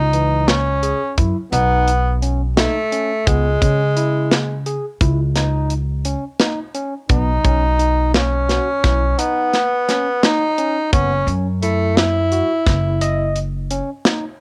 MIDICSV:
0, 0, Header, 1, 5, 480
1, 0, Start_track
1, 0, Key_signature, 4, "minor"
1, 0, Tempo, 696056
1, 2254, Time_signature, 11, 3, 24, 8
1, 9932, End_track
2, 0, Start_track
2, 0, Title_t, "Tine electric piano"
2, 0, Program_c, 0, 4
2, 91, Note_on_c, 0, 52, 64
2, 346, Note_off_c, 0, 52, 0
2, 571, Note_on_c, 0, 68, 61
2, 699, Note_off_c, 0, 68, 0
2, 811, Note_on_c, 0, 64, 60
2, 939, Note_off_c, 0, 64, 0
2, 1053, Note_on_c, 0, 63, 82
2, 1308, Note_off_c, 0, 63, 0
2, 1534, Note_on_c, 0, 61, 63
2, 1661, Note_off_c, 0, 61, 0
2, 1772, Note_on_c, 0, 63, 72
2, 1900, Note_off_c, 0, 63, 0
2, 2014, Note_on_c, 0, 61, 65
2, 2141, Note_off_c, 0, 61, 0
2, 2253, Note_on_c, 0, 59, 71
2, 2381, Note_off_c, 0, 59, 0
2, 2494, Note_on_c, 0, 61, 66
2, 2621, Note_off_c, 0, 61, 0
2, 2735, Note_on_c, 0, 64, 63
2, 2990, Note_off_c, 0, 64, 0
2, 3216, Note_on_c, 0, 68, 64
2, 3343, Note_off_c, 0, 68, 0
2, 3456, Note_on_c, 0, 64, 58
2, 3583, Note_off_c, 0, 64, 0
2, 3695, Note_on_c, 0, 63, 80
2, 3950, Note_off_c, 0, 63, 0
2, 4174, Note_on_c, 0, 61, 67
2, 4302, Note_off_c, 0, 61, 0
2, 4416, Note_on_c, 0, 63, 74
2, 4543, Note_off_c, 0, 63, 0
2, 4654, Note_on_c, 0, 61, 70
2, 4782, Note_off_c, 0, 61, 0
2, 4896, Note_on_c, 0, 59, 72
2, 5023, Note_off_c, 0, 59, 0
2, 5135, Note_on_c, 0, 61, 68
2, 5262, Note_off_c, 0, 61, 0
2, 5373, Note_on_c, 0, 63, 64
2, 5629, Note_off_c, 0, 63, 0
2, 5853, Note_on_c, 0, 66, 63
2, 5981, Note_off_c, 0, 66, 0
2, 6094, Note_on_c, 0, 64, 61
2, 6222, Note_off_c, 0, 64, 0
2, 6335, Note_on_c, 0, 63, 77
2, 6590, Note_off_c, 0, 63, 0
2, 6816, Note_on_c, 0, 61, 66
2, 6943, Note_off_c, 0, 61, 0
2, 7057, Note_on_c, 0, 63, 72
2, 7184, Note_off_c, 0, 63, 0
2, 7297, Note_on_c, 0, 61, 68
2, 7424, Note_off_c, 0, 61, 0
2, 7539, Note_on_c, 0, 59, 75
2, 7665, Note_off_c, 0, 59, 0
2, 7779, Note_on_c, 0, 61, 63
2, 7905, Note_off_c, 0, 61, 0
2, 8019, Note_on_c, 0, 64, 62
2, 8272, Note_off_c, 0, 64, 0
2, 8497, Note_on_c, 0, 66, 65
2, 8623, Note_off_c, 0, 66, 0
2, 8737, Note_on_c, 0, 64, 63
2, 8864, Note_off_c, 0, 64, 0
2, 8974, Note_on_c, 0, 75, 81
2, 9229, Note_off_c, 0, 75, 0
2, 9454, Note_on_c, 0, 61, 68
2, 9581, Note_off_c, 0, 61, 0
2, 9693, Note_on_c, 0, 63, 67
2, 9820, Note_off_c, 0, 63, 0
2, 9932, End_track
3, 0, Start_track
3, 0, Title_t, "Tenor saxophone"
3, 0, Program_c, 1, 66
3, 0, Note_on_c, 1, 63, 92
3, 331, Note_on_c, 1, 61, 80
3, 341, Note_off_c, 1, 63, 0
3, 812, Note_off_c, 1, 61, 0
3, 1049, Note_on_c, 1, 59, 88
3, 1503, Note_off_c, 1, 59, 0
3, 1772, Note_on_c, 1, 57, 91
3, 2253, Note_on_c, 1, 56, 97
3, 2264, Note_off_c, 1, 57, 0
3, 3214, Note_off_c, 1, 56, 0
3, 4889, Note_on_c, 1, 63, 81
3, 5584, Note_off_c, 1, 63, 0
3, 5614, Note_on_c, 1, 61, 79
3, 6333, Note_on_c, 1, 59, 80
3, 6343, Note_off_c, 1, 61, 0
3, 7058, Note_on_c, 1, 63, 95
3, 7068, Note_off_c, 1, 59, 0
3, 7530, Note_off_c, 1, 63, 0
3, 7534, Note_on_c, 1, 61, 91
3, 7807, Note_off_c, 1, 61, 0
3, 8014, Note_on_c, 1, 57, 82
3, 8255, Note_on_c, 1, 64, 86
3, 8265, Note_off_c, 1, 57, 0
3, 9213, Note_off_c, 1, 64, 0
3, 9932, End_track
4, 0, Start_track
4, 0, Title_t, "Upright bass"
4, 0, Program_c, 2, 32
4, 0, Note_on_c, 2, 37, 74
4, 629, Note_off_c, 2, 37, 0
4, 811, Note_on_c, 2, 42, 80
4, 909, Note_off_c, 2, 42, 0
4, 1049, Note_on_c, 2, 35, 86
4, 1828, Note_off_c, 2, 35, 0
4, 2253, Note_on_c, 2, 37, 79
4, 2448, Note_off_c, 2, 37, 0
4, 2494, Note_on_c, 2, 49, 83
4, 3271, Note_off_c, 2, 49, 0
4, 3453, Note_on_c, 2, 37, 85
4, 4231, Note_off_c, 2, 37, 0
4, 4893, Note_on_c, 2, 35, 78
4, 5088, Note_off_c, 2, 35, 0
4, 5134, Note_on_c, 2, 35, 76
4, 5911, Note_off_c, 2, 35, 0
4, 6095, Note_on_c, 2, 35, 79
4, 6289, Note_off_c, 2, 35, 0
4, 7535, Note_on_c, 2, 30, 76
4, 7729, Note_off_c, 2, 30, 0
4, 7769, Note_on_c, 2, 42, 80
4, 8548, Note_off_c, 2, 42, 0
4, 8733, Note_on_c, 2, 30, 84
4, 9510, Note_off_c, 2, 30, 0
4, 9932, End_track
5, 0, Start_track
5, 0, Title_t, "Drums"
5, 91, Note_on_c, 9, 42, 48
5, 160, Note_off_c, 9, 42, 0
5, 331, Note_on_c, 9, 38, 85
5, 331, Note_on_c, 9, 42, 60
5, 400, Note_off_c, 9, 38, 0
5, 400, Note_off_c, 9, 42, 0
5, 572, Note_on_c, 9, 42, 51
5, 641, Note_off_c, 9, 42, 0
5, 811, Note_on_c, 9, 42, 52
5, 812, Note_on_c, 9, 36, 67
5, 880, Note_off_c, 9, 42, 0
5, 881, Note_off_c, 9, 36, 0
5, 1052, Note_on_c, 9, 42, 64
5, 1121, Note_off_c, 9, 42, 0
5, 1293, Note_on_c, 9, 42, 49
5, 1362, Note_off_c, 9, 42, 0
5, 1534, Note_on_c, 9, 42, 51
5, 1603, Note_off_c, 9, 42, 0
5, 1774, Note_on_c, 9, 38, 96
5, 1774, Note_on_c, 9, 42, 76
5, 1843, Note_off_c, 9, 38, 0
5, 1843, Note_off_c, 9, 42, 0
5, 2015, Note_on_c, 9, 42, 51
5, 2084, Note_off_c, 9, 42, 0
5, 2254, Note_on_c, 9, 42, 79
5, 2255, Note_on_c, 9, 36, 96
5, 2323, Note_off_c, 9, 36, 0
5, 2323, Note_off_c, 9, 42, 0
5, 2495, Note_on_c, 9, 36, 68
5, 2497, Note_on_c, 9, 42, 55
5, 2564, Note_off_c, 9, 36, 0
5, 2566, Note_off_c, 9, 42, 0
5, 2735, Note_on_c, 9, 42, 50
5, 2804, Note_off_c, 9, 42, 0
5, 2975, Note_on_c, 9, 38, 85
5, 2975, Note_on_c, 9, 42, 67
5, 3044, Note_off_c, 9, 38, 0
5, 3044, Note_off_c, 9, 42, 0
5, 3215, Note_on_c, 9, 42, 51
5, 3284, Note_off_c, 9, 42, 0
5, 3454, Note_on_c, 9, 36, 67
5, 3454, Note_on_c, 9, 42, 54
5, 3523, Note_off_c, 9, 36, 0
5, 3523, Note_off_c, 9, 42, 0
5, 3694, Note_on_c, 9, 38, 31
5, 3694, Note_on_c, 9, 42, 68
5, 3763, Note_off_c, 9, 38, 0
5, 3763, Note_off_c, 9, 42, 0
5, 3932, Note_on_c, 9, 42, 48
5, 4001, Note_off_c, 9, 42, 0
5, 4171, Note_on_c, 9, 42, 54
5, 4240, Note_off_c, 9, 42, 0
5, 4411, Note_on_c, 9, 38, 96
5, 4411, Note_on_c, 9, 42, 65
5, 4480, Note_off_c, 9, 38, 0
5, 4480, Note_off_c, 9, 42, 0
5, 4652, Note_on_c, 9, 42, 48
5, 4721, Note_off_c, 9, 42, 0
5, 4892, Note_on_c, 9, 42, 67
5, 4894, Note_on_c, 9, 36, 92
5, 4961, Note_off_c, 9, 42, 0
5, 4963, Note_off_c, 9, 36, 0
5, 5134, Note_on_c, 9, 42, 51
5, 5135, Note_on_c, 9, 36, 69
5, 5203, Note_off_c, 9, 42, 0
5, 5204, Note_off_c, 9, 36, 0
5, 5375, Note_on_c, 9, 42, 49
5, 5444, Note_off_c, 9, 42, 0
5, 5616, Note_on_c, 9, 38, 85
5, 5616, Note_on_c, 9, 42, 62
5, 5685, Note_off_c, 9, 38, 0
5, 5685, Note_off_c, 9, 42, 0
5, 5857, Note_on_c, 9, 38, 28
5, 5857, Note_on_c, 9, 42, 48
5, 5926, Note_off_c, 9, 38, 0
5, 5926, Note_off_c, 9, 42, 0
5, 6096, Note_on_c, 9, 36, 69
5, 6096, Note_on_c, 9, 38, 31
5, 6096, Note_on_c, 9, 42, 54
5, 6165, Note_off_c, 9, 36, 0
5, 6165, Note_off_c, 9, 38, 0
5, 6165, Note_off_c, 9, 42, 0
5, 6336, Note_on_c, 9, 42, 72
5, 6405, Note_off_c, 9, 42, 0
5, 6575, Note_on_c, 9, 38, 30
5, 6575, Note_on_c, 9, 42, 49
5, 6644, Note_off_c, 9, 38, 0
5, 6644, Note_off_c, 9, 42, 0
5, 6818, Note_on_c, 9, 38, 29
5, 6818, Note_on_c, 9, 42, 57
5, 6887, Note_off_c, 9, 38, 0
5, 6887, Note_off_c, 9, 42, 0
5, 7056, Note_on_c, 9, 38, 91
5, 7056, Note_on_c, 9, 42, 73
5, 7125, Note_off_c, 9, 38, 0
5, 7125, Note_off_c, 9, 42, 0
5, 7296, Note_on_c, 9, 42, 53
5, 7365, Note_off_c, 9, 42, 0
5, 7536, Note_on_c, 9, 36, 96
5, 7537, Note_on_c, 9, 42, 72
5, 7605, Note_off_c, 9, 36, 0
5, 7606, Note_off_c, 9, 42, 0
5, 7776, Note_on_c, 9, 42, 52
5, 7845, Note_off_c, 9, 42, 0
5, 8016, Note_on_c, 9, 42, 49
5, 8085, Note_off_c, 9, 42, 0
5, 8256, Note_on_c, 9, 38, 91
5, 8256, Note_on_c, 9, 42, 63
5, 8325, Note_off_c, 9, 38, 0
5, 8325, Note_off_c, 9, 42, 0
5, 8495, Note_on_c, 9, 42, 46
5, 8564, Note_off_c, 9, 42, 0
5, 8734, Note_on_c, 9, 36, 67
5, 8736, Note_on_c, 9, 38, 32
5, 8736, Note_on_c, 9, 42, 52
5, 8803, Note_off_c, 9, 36, 0
5, 8805, Note_off_c, 9, 38, 0
5, 8805, Note_off_c, 9, 42, 0
5, 8975, Note_on_c, 9, 42, 69
5, 9044, Note_off_c, 9, 42, 0
5, 9212, Note_on_c, 9, 42, 46
5, 9281, Note_off_c, 9, 42, 0
5, 9452, Note_on_c, 9, 42, 53
5, 9521, Note_off_c, 9, 42, 0
5, 9690, Note_on_c, 9, 38, 91
5, 9690, Note_on_c, 9, 42, 68
5, 9759, Note_off_c, 9, 38, 0
5, 9759, Note_off_c, 9, 42, 0
5, 9932, End_track
0, 0, End_of_file